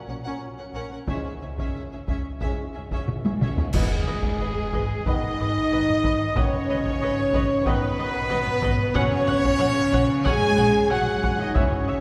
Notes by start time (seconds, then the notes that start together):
0.07 A#1 A#2 C#4 A#4 F#5
0.23 A#2 C#4 A#4 F#5
0.57 A#2 C#4 A#4 F#5
0.73 A#1 A#2 C#4 A#4 F#5
0.89 A#2 C#4 A#4 F#5
1.06 C#2 G#2 C#3 G#3 C#4 E4 G#4 E5, taiko
1.24 C#3 C#4 G#4 E5
1.40 C#2 C#3 C#4 G#4 E5
1.57 C#3 C#4 G#4 E5, taiko
1.74 C#2 C#3 C#4 G#4 E5
1.91 C#3 C#4 G#4 E5
2.07 C#2 C#3 C#4 G#4 E5, taiko
2.40 C#2 G#2 C#3 G#3 C#4 E4 G#4 E5, taiko
2.74 C#2 C#3 C#4 G#4 E5
2.89 C#3 C#4 G#4 E5, taiko
3.08 taiko mid
3.23 C#3 C#4 G#4 E5, taiko high
3.40 C#2 C#3 C#4 G#4 E5, taiko mid
3.57 C#3 C#4 G#4 E5, taiko low
3.74 G#1 G#2 D#3 G#3 B3 G#4 B4 D#5, concert bass drum, taiko, crash, impact
3.91 taiko low-mid
4.07 G#1 B4 D#5
4.23 taiko
4.40 G#1 B4 D#5
4.73 G#1 B4 D#5, taiko
5.06 G#1 D#3 B3 D#4 B4 D#5, taiko
5.23 taiko low-mid
5.39 G#1 B4 D#5
5.72 G#1 B4 D#5
5.88 taiko low-mid
6.03 G#1 B4 D#5, taiko
6.36 G#1 C#3 D#3 B3 C#4 B4 C#5 D#5, taiko
6.53 taiko low-mid
6.69 G#1 B4 D#5
6.85 taiko
7.01 G#1 B4 D#5
7.33 G#1 B4 D#5, taiko
7.65 G#1 B2 D#3 B3 B4 D#5, taiko
7.82 taiko low-mid
7.98 G#1 B4 D#5
8.30 G#1 B4 D#5
8.47 taiko low-mid
8.62 G#1 B4 D#5, taiko
8.94 A#1 C#3 F#3 C#4 C#5 F#5, taiko
9.12 taiko low-mid
9.27 A#1 C#5 F#5
9.44 taiko
9.59 A#1 C#5 F#5
9.92 A#1 C#5 F#5, taiko
10.25 A#1 F#3 G#3 C#4 G#4 C#5 F#5 G#5, taiko
10.42 taiko low-mid
10.57 A#1 C#5 F#5
10.90 A#1 F#3 F#4 C#5 F#5
11.07 taiko low-mid
11.22 A#1 C#5 F#5, taiko
11.39 D#3 D#4 D#5
11.55 C#2 C#3 E3 C#4 C#5 E5, taiko
11.72 taiko low-mid
11.88 C#2 C#5 E5